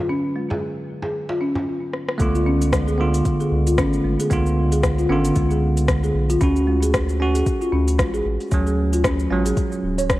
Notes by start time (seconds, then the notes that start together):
Already playing: D3 F#3 B3 C#4 B4
0.09 C#4
0.36 G#3
0.50 G#4, djembe slap, djembe tone, djembe bass
1.03 G#4, djembe tone
1.29 F4, djembe slap
1.41 C#4
1.56 djembe tone, djembe bass
1.94 cross-stick
2.09 cross-stick
2.18 C#2 D3 A3 B3 A4, kick, open hi-hat, cabasa
2.22 F4
2.35 F4, cabasa
2.46 C#4
2.62 open hi-hat, cabasa
2.73 G#3, kick, cross-stick, open hi-hat, cabasa
2.88 G#4, cabasa
2.98 D3 B3 F4
3.14 open hi-hat, cabasa
3.25 kick, open hi-hat, cabasa
3.40 G#4, cabasa
3.52 C#2
3.67 F4, open hi-hat, cabasa
3.78 G#1 C#4, kick, cross-stick, open hi-hat, cabasa
3.93 cabasa
4.04 G#1 G#3
4.20 G#4, open hi-hat, cabasa
4.30 C#2 D3 B3 F4, kick, open hi-hat, cabasa
4.46 cabasa
4.72 G#4, open hi-hat, cabasa
4.83 kick, cross-stick, open hi-hat, cabasa
4.98 F4, cabasa
5.09 G#1 D3 B3 C#4 F4
5.25 open hi-hat, cabasa
5.36 C#2 G#3, kick, open hi-hat, cabasa
5.51 G#4, cabasa
5.77 open hi-hat, cabasa
5.88 kick, cross-stick, open hi-hat, cabasa
6.04 G#4, cabasa
6.15 B1
6.30 F4, open hi-hat, cabasa
6.41 D2 C#4 F#4, kick, open hi-hat, cabasa
6.56 cabasa
6.67 G#3
6.82 G#4, open hi-hat, cabasa
6.94 kick, cross-stick, open hi-hat, cabasa
7.09 cabasa
7.20 C#4 F#4
7.35 G#4, open hi-hat, cabasa
7.46 kick, open hi-hat, cabasa
7.61 F4, cabasa
7.72 D2 C#4
7.88 open hi-hat, cabasa
7.99 A1 G#3, kick, cross-stick, open hi-hat, cabasa
8.14 G#4, cabasa
8.25 A1
8.40 open hi-hat, cabasa
8.51 D2 F#3 C#4, kick, open hi-hat, cabasa
8.67 G#4, cabasa
8.93 F4, open hi-hat, cabasa
9.04 C#4, kick, cross-stick, open hi-hat, cabasa
9.19 cabasa
9.30 A1 F#3 G#3 C#4
9.46 G#4, open hi-hat, cabasa
9.57 kick, open hi-hat, cabasa
9.72 cabasa
9.83 D1
9.98 C#5, open hi-hat, cabasa
10.10 kick, cross-stick, open hi-hat, cabasa